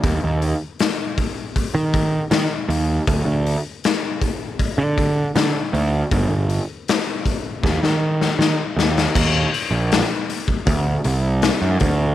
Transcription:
<<
  \new Staff \with { instrumentName = "Picked electric bass" } { \clef bass \time 4/4 \tempo 4 = 79 ees,16 ees,8 r4. ees8. ees16 r16 ees,8 | d,16 d,8 r4. d8. d16 r16 d,8 | g,,16 g,,8 r4 r16 ees,16 ees8. ees16 r16 ees,8 | ees,8 r16 bes,,8 r8. d,8 c,8. fis,16 d,8 | }
  \new DrumStaff \with { instrumentName = "Drums" } \drummode { \time 4/4 <hho bd>8 hho8 <hho sn>8 <hho bd>8 <hho bd>8 <hho bd>8 <hho sn>8 hho8 | <hho bd>8 hho8 <hho sn>8 <hho bd>8 <hho bd>8 <hho bd>8 <hho sn>8 hho8 | <hho bd>8 hho8 <hho sn>8 <hho bd>8 <bd sn>16 sn8 sn16 sn8 sn16 sn16 | <cymc bd>8 hho8 <hho sn>8 hho16 bd16 <hho bd>8 hho8 <hho sn>8 <hho bd>8 | }
>>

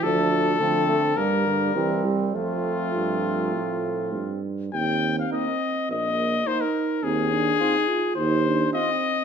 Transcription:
<<
  \new Staff \with { instrumentName = "Trumpet" } { \time 4/4 \key f \major \tempo 4 = 104 a'2 bes'4. r8 | f'2.~ f'8 r8 | \key ees \major g''8. f''16 ees''4 ees''4 c''16 bes'8. | aes'2 c''4 ees''4 | }
  \new Staff \with { instrumentName = "Flugelhorn" } { \time 4/4 \key f \major d'4 c'4 bes4 c'4 | c'2.~ c'8 r8 | \key ees \major r4 ees'4 r4 ees'4 | r4 f'4 r4 f'4 | }
  \new Staff \with { instrumentName = "Euphonium" } { \time 4/4 \key f \major f4 f8 r8 g8 d8 e8 g8 | f2.~ f8 r8 | \key ees \major c'2 bes4 ees'4 | c'8 d'8 ees'8 f'8 ees'8 d'8 c'4 | }
  \new Staff \with { instrumentName = "French horn" } { \time 4/4 \key f \major a4 a8 a8 g4 g4 | a2.~ a8 r8 | \key ees \major r4 bes4 r4 bes4 | r4 c'4 r4 c'4 | }
  \new Staff \with { instrumentName = "Tuba" } { \clef bass \time 4/4 \key f \major d,4 d4 g,4 c,4 | f,4 g,4 a,4 g,4 | \key ees \major ees,4 r4 bes,,4 r4 | ees,4 r4 ees,4 r4 | }
>>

